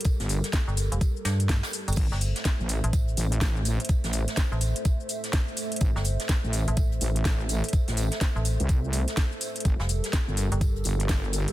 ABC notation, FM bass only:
X:1
M:4/4
L:1/16
Q:"Swing 16ths" 1/4=125
K:Aphr
V:1 name="FM bass" clef=bass
z4 z G,,,2 F,,, z2 G,,3 z2 G,,, | z G,,,2 z4 A,,,3 z6 | z4 z A,,,2 z8 z | z G,,,2 z4 A,,,3 z6 |
z4 z A,,,2 z8 z | z F,,,2 z4 G,,,3 z6 |]